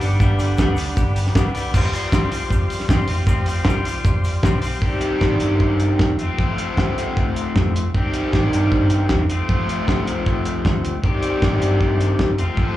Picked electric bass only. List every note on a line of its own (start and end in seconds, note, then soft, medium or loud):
0.02 0.17 G1 medium
0.20 0.52 G1 loud
0.59 0.91 D2 loud
0.97 1.29 G1 loud
1.36 1.67 C2 loud
1.74 1.90 F1 loud
2.13 2.45 C2 loud
2.50 2.66 F1 loud
2.88 2.97 F1 loud
3.09 3.25 F1 loud
3.27 3.59 F1 loud
3.65 3.98 C2 loud
4.05 4.37 F1 loud
4.43 4.75 B1 loud
4.81 5.14 C2 medium
5.22 5.38 A1 medium
5.42 5.58 G2 medium
5.60 5.93 G2 medium
5.99 6.16 D#2 loud
6.20 6.28 F2 medium
6.38 6.71 F3 medium
6.77 7.09 C2 loud
7.16 7.48 C2 medium
7.56 7.88 F2 medium
7.94 8.26 C2 medium
8.34 8.49 A1 medium
8.54 8.69 G2 medium
8.72 9.04 G2 medium
9.11 9.26 E2 loud
9.31 9.38 F2 medium
9.49 9.81 F3 loud
9.88 10.20 C2 loud
10.27 10.58 C2 medium
10.65 10.97 D2 medium
11.03 11.35 C2 medium
11.43 11.59 A1 medium
11.62 11.78 G2 medium
11.81 12.13 G2 medium
12.19 12.35 C2 loud
12.38 12.47 F2 medium
12.57 12.77 F3 medium